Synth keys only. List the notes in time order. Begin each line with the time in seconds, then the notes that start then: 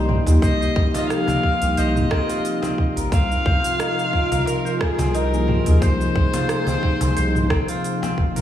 0.26 F3 A#3 D#4 G4
1.09 F3 A#3 D#4 G4
1.60 F3 A#3 D#4 G4
5.32 F3 A#3 D#4 G#4
5.64 F3 A#3 D#4
5.68 G#4
6.48 F3 A#3 D#4 G#4
6.99 F3 A#3 D#4
7.03 G#4